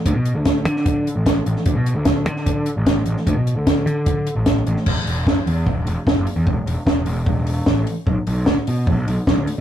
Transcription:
<<
  \new Staff \with { instrumentName = "Picked electric bass" } { \clef bass \time 4/4 \key d \major \tempo 4 = 150 d,16 b,8 d,8. d4~ d16 a,,8. a,,16 r16 | d,16 b,8 d,8. d4~ d16 a,,8. a,,16 r16 | d,16 b,8 d,8. d4~ d16 a,,8. a,,16 r16 | e,,16 r16 e,,8 fis,,16 r16 e,8 e,,8 e,,16 r16 e,,16 fis,,16 r16 e,16 |
e,,16 r16 e,,16 r16 e,,8 e,,8 e,,4 a,,8 r8 | b,,16 r16 b,,8 d,16 r16 b,8 b,,8 b,,16 r16 b,,16 d,16 r8 | }
  \new DrumStaff \with { instrumentName = "Drums" } \drummode { \time 4/4 <hh bd>8 hh8 <hh bd sn>8 hh16 sn16 <hh bd>8 hh8 <hh bd sn>8 hh16 sn16 | <hh bd>8 hh8 <hh bd sn>8 hh16 sn16 <hh bd>8 hh8 <hh bd sn>8 hh16 sn16 | <hh bd>8 hh8 <hh bd sn>8 hh8 <hh bd>8 hh8 <hh bd sn>8 hh16 sn16 | <cymc bd>8 hho8 <bd sn>8 hho8 bd8 hho8 <bd sn>8 hho8 |
bd8 hho8 <bd sn>8 hho8 bd8 hho8 <bd sn>8 hho8 | bd8 hho8 <bd sn>8 hho8 bd8 hho8 <bd sn>8 hho8 | }
>>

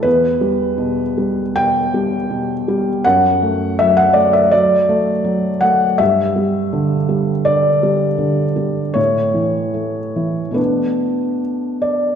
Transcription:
<<
  \new Staff \with { instrumentName = "Felt piano" } { \time 4/4 \key e \dorian \tempo 4 = 81 b'2 g''2 | fis''4 e''16 fis''16 d''16 e''16 d''4. fis''8 | e''2 d''2 | cis''2 b'4 r8 d''8 | }
  \new Staff \with { instrumentName = "Felt piano" } { \clef bass \time 4/4 \key e \dorian e,8 g8 b,8 g8 b,8 g8 b,8 g8 | fis,8 a8 fis8 a8 fis8 a8 fis8 a8 | g,8 g8 d8 g8 d8 g8 d8 g8 | a,8 e8 a8 e8 <b, a b d'>2 | }
>>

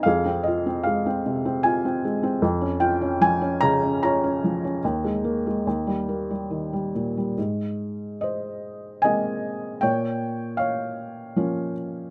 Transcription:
<<
  \new Staff \with { instrumentName = "Felt piano" } { \time 3/4 \key aes \major \tempo 4 = 75 << { f''8 ees''8 f''4 aes''8. r16 | r8 g''8 aes''8 bes''8 bes''4~ | bes''2~ bes''8 r8 | r4 ees''4 aes''4 |
g''4 f''4. r8 | } \\ { aes'4. r4. | r2 des''4~ | des''2~ des''8 r8 | r4 c''4 ees''4 |
des''4 des''4. r8 | } >> }
  \new Staff \with { instrumentName = "Felt piano" } { \time 3/4 \key aes \major f,16 c'16 f'16 c'16 aes16 c'16 c16 c'16 f'16 c'16 aes16 c'16 | f,16 des'16 f'16 des'16 f16 des'16 des16 des'16 f'16 des'16 f16 des'16 | ees,16 aes16 bes16 aes16 ees,16 g16 bes16 g16 ees16 g16 bes,16 g16 | aes,2 <aes bes c'>4 |
bes,2 <f bes des'>4 | }
>>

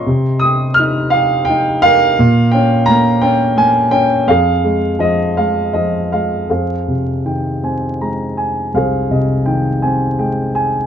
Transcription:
<<
  \new Staff \with { instrumentName = "Grand piano" } { \time 6/8 \key f \minor \tempo 4. = 56 << { c'''8 ees'''8 f'''8 f''8 g''8 f''8~ | f''8 g''8 bes''8 g''8 aes''8 g''8 | f''4 ees''8 f''8 ees''8 f''8 | f''4 g''8 aes''8 bes''8 aes''8 |
f''8 ees''8 g''8 aes''8 g''8 aes''8 | } \\ { ees''4 r4. bes'8~ | bes'4 r2 | aes'2~ aes'8 r8 | <aes' c''>4. r4. |
<aes' c''>4. r4. | } >> }
  \new Staff \with { instrumentName = "Grand piano" } { \clef bass \time 6/8 \key f \minor c8 g'8 ees'8 g'8 ees'8 g'8 | bes,8 des'8 bes8 des'8 bes8 des'8 | f,8 aes8 f8 aes8 f8 aes8 | f,8 c8 ees8 c'8 aes4 |
c,8 c8 ees8 c'8 aes4 | }
>>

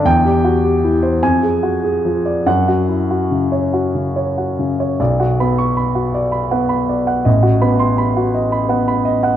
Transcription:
<<
  \new Staff \with { instrumentName = "Grand piano" } { \time 6/8 \key b \minor \tempo 4. = 52 << { g''8 r4 aes''8 r4 | fis''8 r2 r8 | r8. cis'''16 r2 | r8. c'''16 r2 | } \\ { r16 g'16 fis'16 g'16 e16 c''16 r16 aes'16 fis'16 aes'16 f16 d''16 | r16 fis'16 e'16 fis'16 cis16 cis''16 fis'16 cis16 cis''16 fis'16 cis16 cis''16 | d''16 fis'16 b''8 b''16 fis'16 d''16 b''16 fis''16 b''16 d''16 fis''16 | dis''16 fis'16 b''8 b''16 fis'16 dis''16 b''16 fis''16 b''16 dis''16 fis''16 | } >> }
  \new Staff \with { instrumentName = "Grand piano" } { \clef bass \time 6/8 \key b \minor e,4. f,4. | fis,2. | b,,8 b4 r8 b4 | a,,8 b4 r8 b4 | }
>>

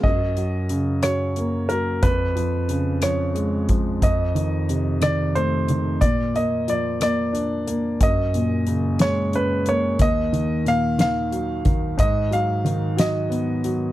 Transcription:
<<
  \new Staff \with { instrumentName = "Grand piano" } { \time 6/8 \key ges \major \tempo 4. = 60 ees''4. des''4 bes'8 | ces''4. des''4 r8 | ees''4. d''8 c''4 | d''8 ees''8 d''8 d''4. |
ees''4. des''8 ces''8 des''8 | ees''4 f''8 f''4. | ees''8 f''4 ees''4. | }
  \new Staff \with { instrumentName = "Grand piano" } { \clef bass \time 6/8 \key ges \major ges,8 ges8 des8 ges8 bes8 ges8 | f,8 f8 des8 f8 aes8 f8 | f,8 ees8 c8 ees8 a8 ees8 | bes,8 bes8 f8 bes8 d'8 bes8 |
ges,8 bes,8 des8 aes8 des'8 bes8 | ees,8 ees8 bes,8 ees8 ges8 ees8 | aes,8 ges8 ees8 ges8 ces'8 ges8 | }
  \new DrumStaff \with { instrumentName = "Drums" } \drummode { \time 6/8 <cymc bd>8 hh8 hh8 <hh ss>8 hh8 hh8 | <hh bd>8 hh8 hh8 <hh ss>8 hh8 <hh bd>8 | <hh bd>8 hh8 hh8 <hh ss>8 hh8 hh8 | <hh bd>8 hh8 hh8 <hh ss>8 hh8 hh8 |
<hh bd>8 hh8 hh8 <hh sn>8 hh8 hh8 | <hh bd>8 hh8 hh8 <hh sn>8 hh8 <hh bd>8 | <hh bd>8 hh8 hh8 <hh sn>8 hh8 hh8 | }
>>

